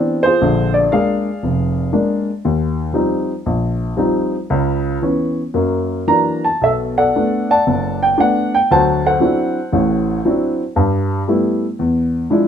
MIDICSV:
0, 0, Header, 1, 2, 480
1, 0, Start_track
1, 0, Tempo, 508475
1, 395, Time_signature, 4, 2, 24, 8
1, 3273, Tempo, 527241
1, 6633, Tempo, 515021
1, 11590, End_track
2, 0, Start_track
2, 0, Title_t, "Grand piano"
2, 0, Program_c, 0, 0
2, 0, Note_on_c, 0, 52, 52
2, 0, Note_on_c, 0, 59, 43
2, 0, Note_on_c, 0, 60, 49
2, 0, Note_on_c, 0, 62, 61
2, 0, Note_on_c, 0, 64, 44
2, 0, Note_on_c, 0, 67, 48
2, 201, Note_off_c, 0, 64, 0
2, 201, Note_off_c, 0, 67, 0
2, 216, Note_on_c, 0, 72, 96
2, 232, Note_on_c, 0, 65, 59
2, 240, Note_on_c, 0, 68, 59
2, 248, Note_off_c, 0, 59, 0
2, 249, Note_off_c, 0, 52, 0
2, 249, Note_off_c, 0, 60, 0
2, 252, Note_off_c, 0, 62, 0
2, 388, Note_on_c, 0, 34, 69
2, 389, Note_on_c, 0, 50, 71
2, 669, Note_off_c, 0, 72, 0
2, 697, Note_on_c, 0, 74, 80
2, 806, Note_off_c, 0, 34, 0
2, 806, Note_off_c, 0, 50, 0
2, 852, Note_off_c, 0, 74, 0
2, 864, Note_on_c, 0, 58, 46
2, 867, Note_off_c, 0, 68, 0
2, 870, Note_on_c, 0, 56, 50
2, 870, Note_on_c, 0, 77, 85
2, 875, Note_on_c, 0, 62, 56
2, 881, Note_on_c, 0, 68, 57
2, 883, Note_on_c, 0, 74, 56
2, 1152, Note_off_c, 0, 65, 0
2, 1204, Note_off_c, 0, 58, 0
2, 1207, Note_off_c, 0, 56, 0
2, 1210, Note_off_c, 0, 62, 0
2, 1352, Note_on_c, 0, 29, 61
2, 1765, Note_off_c, 0, 29, 0
2, 1818, Note_on_c, 0, 56, 53
2, 1821, Note_on_c, 0, 58, 47
2, 1822, Note_on_c, 0, 62, 57
2, 2111, Note_off_c, 0, 77, 0
2, 2116, Note_off_c, 0, 68, 0
2, 2118, Note_off_c, 0, 74, 0
2, 2161, Note_off_c, 0, 56, 0
2, 2162, Note_off_c, 0, 58, 0
2, 2163, Note_off_c, 0, 62, 0
2, 2311, Note_on_c, 0, 39, 67
2, 2729, Note_off_c, 0, 39, 0
2, 2764, Note_on_c, 0, 53, 51
2, 2773, Note_on_c, 0, 55, 49
2, 2774, Note_on_c, 0, 60, 51
2, 2781, Note_on_c, 0, 63, 61
2, 3117, Note_off_c, 0, 53, 0
2, 3121, Note_off_c, 0, 55, 0
2, 3121, Note_off_c, 0, 60, 0
2, 3125, Note_off_c, 0, 63, 0
2, 3265, Note_on_c, 0, 34, 70
2, 3679, Note_off_c, 0, 34, 0
2, 3728, Note_on_c, 0, 53, 57
2, 3730, Note_on_c, 0, 55, 48
2, 3731, Note_on_c, 0, 60, 52
2, 3741, Note_on_c, 0, 63, 64
2, 4070, Note_off_c, 0, 53, 0
2, 4071, Note_off_c, 0, 55, 0
2, 4072, Note_off_c, 0, 60, 0
2, 4077, Note_off_c, 0, 63, 0
2, 4215, Note_on_c, 0, 37, 79
2, 4216, Note_on_c, 0, 49, 66
2, 4632, Note_off_c, 0, 37, 0
2, 4632, Note_off_c, 0, 49, 0
2, 4687, Note_on_c, 0, 52, 53
2, 4693, Note_on_c, 0, 59, 48
2, 4695, Note_on_c, 0, 61, 56
2, 5031, Note_off_c, 0, 52, 0
2, 5034, Note_off_c, 0, 59, 0
2, 5035, Note_off_c, 0, 61, 0
2, 5161, Note_on_c, 0, 42, 63
2, 5168, Note_on_c, 0, 58, 63
2, 5594, Note_off_c, 0, 42, 0
2, 5597, Note_off_c, 0, 58, 0
2, 5645, Note_on_c, 0, 58, 46
2, 5648, Note_on_c, 0, 52, 47
2, 5648, Note_on_c, 0, 54, 48
2, 5651, Note_on_c, 0, 62, 55
2, 5651, Note_on_c, 0, 82, 88
2, 5984, Note_on_c, 0, 81, 77
2, 5997, Note_off_c, 0, 82, 0
2, 6000, Note_off_c, 0, 58, 0
2, 6002, Note_off_c, 0, 52, 0
2, 6002, Note_off_c, 0, 54, 0
2, 6004, Note_off_c, 0, 62, 0
2, 6136, Note_on_c, 0, 35, 69
2, 6138, Note_on_c, 0, 47, 67
2, 6154, Note_off_c, 0, 81, 0
2, 6158, Note_on_c, 0, 76, 87
2, 6162, Note_on_c, 0, 69, 59
2, 6230, Note_off_c, 0, 76, 0
2, 6456, Note_off_c, 0, 69, 0
2, 6469, Note_on_c, 0, 78, 82
2, 6470, Note_on_c, 0, 69, 58
2, 6471, Note_on_c, 0, 74, 57
2, 6560, Note_off_c, 0, 35, 0
2, 6561, Note_off_c, 0, 47, 0
2, 6632, Note_on_c, 0, 59, 47
2, 6636, Note_on_c, 0, 57, 50
2, 6637, Note_on_c, 0, 62, 57
2, 6943, Note_off_c, 0, 74, 0
2, 6945, Note_off_c, 0, 78, 0
2, 6957, Note_on_c, 0, 74, 65
2, 6959, Note_on_c, 0, 78, 58
2, 6960, Note_on_c, 0, 81, 87
2, 6972, Note_off_c, 0, 59, 0
2, 6974, Note_off_c, 0, 57, 0
2, 6975, Note_off_c, 0, 62, 0
2, 7111, Note_on_c, 0, 30, 66
2, 7397, Note_off_c, 0, 69, 0
2, 7441, Note_on_c, 0, 79, 81
2, 7454, Note_off_c, 0, 81, 0
2, 7531, Note_off_c, 0, 30, 0
2, 7580, Note_on_c, 0, 57, 49
2, 7583, Note_on_c, 0, 59, 51
2, 7584, Note_on_c, 0, 62, 62
2, 7594, Note_off_c, 0, 78, 0
2, 7603, Note_off_c, 0, 79, 0
2, 7608, Note_on_c, 0, 78, 91
2, 7882, Note_off_c, 0, 74, 0
2, 7926, Note_on_c, 0, 79, 87
2, 7927, Note_off_c, 0, 57, 0
2, 7929, Note_off_c, 0, 59, 0
2, 7929, Note_off_c, 0, 62, 0
2, 7934, Note_off_c, 0, 78, 0
2, 8070, Note_off_c, 0, 79, 0
2, 8078, Note_on_c, 0, 38, 76
2, 8083, Note_on_c, 0, 54, 74
2, 8086, Note_on_c, 0, 78, 63
2, 8087, Note_on_c, 0, 72, 69
2, 8087, Note_on_c, 0, 81, 90
2, 8397, Note_off_c, 0, 78, 0
2, 8399, Note_off_c, 0, 72, 0
2, 8408, Note_on_c, 0, 69, 53
2, 8411, Note_on_c, 0, 78, 85
2, 8413, Note_on_c, 0, 72, 57
2, 8414, Note_off_c, 0, 81, 0
2, 8495, Note_off_c, 0, 38, 0
2, 8498, Note_off_c, 0, 54, 0
2, 8539, Note_on_c, 0, 54, 54
2, 8543, Note_on_c, 0, 60, 46
2, 8547, Note_on_c, 0, 62, 46
2, 8547, Note_on_c, 0, 64, 55
2, 8887, Note_off_c, 0, 54, 0
2, 8888, Note_off_c, 0, 60, 0
2, 8891, Note_off_c, 0, 62, 0
2, 8891, Note_off_c, 0, 64, 0
2, 9026, Note_on_c, 0, 33, 67
2, 9034, Note_on_c, 0, 45, 77
2, 9449, Note_off_c, 0, 33, 0
2, 9454, Note_off_c, 0, 45, 0
2, 9515, Note_on_c, 0, 54, 57
2, 9518, Note_on_c, 0, 62, 50
2, 9521, Note_on_c, 0, 64, 62
2, 9522, Note_on_c, 0, 60, 53
2, 9807, Note_off_c, 0, 69, 0
2, 9809, Note_off_c, 0, 78, 0
2, 9810, Note_off_c, 0, 72, 0
2, 9854, Note_off_c, 0, 54, 0
2, 9855, Note_off_c, 0, 62, 0
2, 9857, Note_off_c, 0, 60, 0
2, 9857, Note_off_c, 0, 64, 0
2, 9991, Note_on_c, 0, 43, 76
2, 10405, Note_off_c, 0, 43, 0
2, 10473, Note_on_c, 0, 55, 50
2, 10476, Note_on_c, 0, 57, 51
2, 10477, Note_on_c, 0, 59, 49
2, 10481, Note_on_c, 0, 64, 60
2, 10811, Note_off_c, 0, 55, 0
2, 10812, Note_off_c, 0, 57, 0
2, 10813, Note_off_c, 0, 59, 0
2, 10815, Note_off_c, 0, 64, 0
2, 10953, Note_on_c, 0, 40, 71
2, 11371, Note_off_c, 0, 40, 0
2, 11426, Note_on_c, 0, 53, 58
2, 11430, Note_on_c, 0, 56, 57
2, 11432, Note_on_c, 0, 62, 58
2, 11437, Note_on_c, 0, 64, 63
2, 11590, Note_off_c, 0, 53, 0
2, 11590, Note_off_c, 0, 56, 0
2, 11590, Note_off_c, 0, 62, 0
2, 11590, Note_off_c, 0, 64, 0
2, 11590, End_track
0, 0, End_of_file